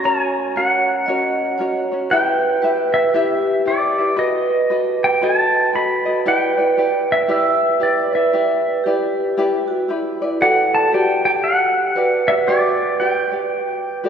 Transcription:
Already playing: C#5
0.04 C#4 F#4 A#4 C#5 G#5
0.56 C#4 F#4 A#4 C#5 F#5
1.06 C#4 F#4 A#4 C#5 D#5
1.58 C#4 F#4 A#4 C#5
1.92 C#4 F#4 C#5
2.10 E4 G4 B4 E5 G5
2.62 E4 G4 B4 E5
2.94 E5
3.14 E4 G4 B4 E5
3.65 E4 G4 B4 D5 E5
3.98 E4 B4 E5
4.16 F#4 A4 B4 D#5
4.70 F#4 A4 B4 D#5
5.04 G5
5.22 F#4 A4 B4 D#5 A5
5.73 F#4 A4 B4 D#5 B5
6.05 F#4 A4 D#5
6.26 E4 G4 B4 D5 G5
6.58 E4 B4 D5
6.77 E4 G4 B4 D5
7.12 E5
7.28 E4 G4 B4 D5 E5
7.80 E4 G4 B4 D5
8.12 E4 B4 D5 E5
8.33 E4 G4 B4 D5
8.84 E4 G4 B4 D5
9.37 E4 G4 B4 D5
9.68 F#4
9.88 E4 G4 B4 D5
10.22 E4 B4 D5
10.41 F#4 G4 A4 B4 D5 F#5
10.75 A5
10.88 F#4 G4
10.92 F#4 G4 B4 D5 G5
11.25 G4 D5 G5
11.44 F#5
11.95 F#4 G4 B4 D5
12.28 F#4 G4 D5 E5
12.47 F#4 G4 B4 D5
13.00 F#4 G4 B4 D5 G5
13.32 G4 D5
14.04 F#4 G4 A4 B4 D5

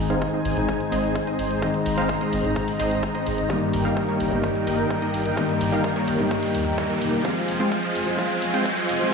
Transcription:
Already playing: G#2 D#3 G#3 C4 D#4 C5 G#5, riser
0.00 G#1
0.10 G#3 C4 D#4 C5 F5, closed hi-hat
0.22 kick, closed hi-hat
0.33 G#3 C4 D#4 C5 D#5
0.45 G#1, open hi-hat
0.56 G#1 G#2 D#3 G#3 C4 D#4, closed hi-hat
0.69 kick, closed hi-hat
0.80 closed hi-hat
0.92 G#1 G#3 C4 D#4 C5 D#5, open hi-hat
1.04 closed hi-hat
1.15 kick, closed hi-hat
1.27 G#3 C4 D#4 C5 D#5, closed hi-hat
1.39 G#1, open hi-hat
1.51 closed hi-hat
1.61 G#2 D#3 G#3 C4 D#4 C5 D#5 A#5, kick, closed hi-hat
1.74 closed hi-hat
1.86 G#1, open hi-hat
1.97 G#3 C4 D#4 C5 F5, closed hi-hat
2.09 kick, closed hi-hat
2.21 G#3 C4 D#4 C5 D#5, closed hi-hat
2.33 G#1, open hi-hat
2.43 G#1 G#2 D#3 G#3 C4 D#4, closed hi-hat
2.56 kick, closed hi-hat
2.68 open hi-hat
2.79 G#1 G#3 C4 D#4 C5 D#5, open hi-hat
2.91 closed hi-hat
3.03 kick, closed hi-hat
3.15 G#3 C4 D#4 C5 D#5, closed hi-hat
3.26 G#1, open hi-hat
3.38 closed hi-hat
3.49 G2 D#3 G3 A#3 D#4 A#4 D#5 G5, kick, closed hi-hat
3.73 G1, open hi-hat
3.85 G3 A#3 D#4 A#4 F5, closed hi-hat
3.97 kick, closed hi-hat
4.08 G3 A#3 D#4 A#4 C#5
4.20 G1, open hi-hat
4.31 G1 G2 D#3 G3 A#3 D#4, closed hi-hat
4.44 kick, closed hi-hat
4.55 closed hi-hat
4.67 G1 G3 A#3 D#4 A#4 D#5, open hi-hat
4.79 closed hi-hat
4.90 kick, closed hi-hat
5.02 G3 A#3 D#4 A#4 D#5, closed hi-hat
5.14 G1, open hi-hat
5.26 closed hi-hat
5.36 G2 D#3 G3 A#3 D#4 A#4 D#5, kick, closed hi-hat
5.49 closed hi-hat
5.61 G1, open hi-hat
5.72 G3 A#3 D#4 A#4 F5, closed hi-hat
5.84 kick, closed hi-hat
5.96 G3 A#3 D#4 A#4 C#5, closed hi-hat
6.08 G1, open hi-hat
6.18 G1 G2 D#3 G3 A#3 D#4, closed hi-hat
6.31 kick, closed hi-hat
6.43 open hi-hat
6.54 D#2, open hi-hat
6.66 closed hi-hat
6.78 G3 A#3 D#4 A#4 C#5, kick, closed hi-hat
6.90 G3 A#3 D#4 A#4 G5, closed hi-hat
7.01 F1, open hi-hat
7.13 closed hi-hat
7.24 F3 G#3 C4 F4 C5 F5 G#5, kick, closed hi-hat, shaker
7.37 shaker
7.48 F1, open hi-hat, shaker
7.60 G#3 C4 F4 C5 G5, closed hi-hat, shaker
7.72 kick, closed hi-hat, shaker
7.83 G#3 C4 F4 C5 D#5, shaker
7.95 F1, open hi-hat, shaker
8.06 F1 F3 G#3 C4 F4, closed hi-hat, shaker
8.17 F3 G#3 C4 F4 C5 F5, kick, closed hi-hat, shaker
8.30 closed hi-hat, shaker
8.42 F1, open hi-hat, shaker
8.54 G#3 C4 F4 C5 G5, closed hi-hat, shaker
8.65 kick, closed hi-hat, shaker
8.77 G#3 C4 F4 C5 D#5, closed hi-hat, shaker
8.89 F1, open hi-hat, shaker
8.99 F3 G#3 C4 F4, closed hi-hat, shaker

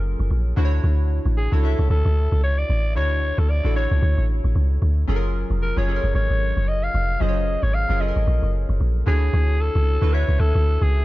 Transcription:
Already playing: F#1 F#3 C#4 F4 G#4 A4 A#4 C#5
0.20 F#1
0.31 A#1
0.56 D2 D3 D4 E4 F#4 C5
0.65 C#5
0.84 D2
1.26 A1
1.38 G#4
1.51 C#2 D3 D4 E4 F#4 A4 C#5
1.62 D3 D4 E4 F#4 E5
1.79 C#2
1.90 D2 A4
2.05 D2
2.32 C#2
2.44 C#5
2.59 D5
2.70 A1
2.95 D2 D3 D4 E4 F#4 C#5
3.38 D2 A4
3.50 D5
3.64 A1 D3 D4 E4 F#4 A4
3.75 D3 D4 E4 F#4 C#5
3.91 C#2
4.02 D2
4.18 A1
4.44 A1
4.55 C#2
4.82 D2
5.07 F#1 F#3 C#4 F4 G#4 A4
5.16 A#4
5.50 F1
5.62 A#4
5.76 F#1 F#3 C#4 F4 G#4 C#5
5.87 F#3 C#4 F4 G#4 A4
5.96 A#4
6.04 F#1
6.15 G#1 C#5
6.30 G#1
6.57 F#1
6.68 D#5
6.84 F5
6.94 F1
7.20 F#1 F#3 C#4 F4 G#4 C5 D#5
7.28 C#5
7.63 G#1 C#5
7.74 F5
7.88 F#1 F#3 C#4 F4 G#4 A#4
8.00 F#3 C#4 F4 G#4 A4 D#5
8.08 A#4
8.16 G#1
8.27 A#1
8.43 F#1
8.69 F#1
8.80 A#1
9.06 D2 D3 D4 E4 F#4 G#4 C#5
9.34 D2
9.61 A4
9.75 C#2
10.01 D2 D3 D4 E4 F#4 B4
10.12 D3 D4 E4 F#4 C#5 E5
10.29 C#2
10.40 D2 A4
10.55 D2
10.82 C#2 G#4

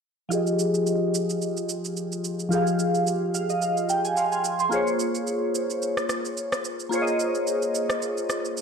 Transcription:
0.29 F3 F4 G4, shaker
0.33 G#4 D#5
0.47 shaker
0.59 shaker
0.74 shaker
0.87 shaker
1.15 shaker
1.30 shaker
1.42 shaker
1.57 shaker
1.69 shaker
1.85 shaker
1.97 shaker
2.12 shaker
2.24 shaker
2.40 shaker
2.49 F3 F4 G4, shaker
2.53 G#4 F5
2.67 shaker
2.79 shaker
2.95 shaker
3.07 shaker
3.35 F5, shaker
3.50 D#5, shaker
3.62 F5, shaker
3.77 shaker
3.89 G5, shaker
4.05 G#5, shaker
4.17 F5 C6, shaker
4.32 F5 G#5, shaker
4.44 shaker
4.59 G#5 C6, shaker
4.69 A#3 F4 G#4, shaker
4.74 C5 C#5
4.87 shaker
5.00 shaker
5.15 shaker
5.27 shaker
5.55 shaker
5.70 shaker
5.82 shaker
5.97 cross-stick, shaker
6.09 cross-stick, shaker
6.25 shaker
6.37 shaker
6.52 cross-stick, shaker
6.65 shaker
6.80 shaker
6.89 A#3 F4 G#4, shaker
6.94 C5 C#5
7.02 D#5
7.07 shaker
7.20 shaker
7.35 shaker
7.47 shaker
7.62 shaker
7.75 shaker
7.90 cross-stick, shaker
8.02 shaker
8.18 shaker
8.30 cross-stick, shaker
8.45 shaker
8.57 shaker

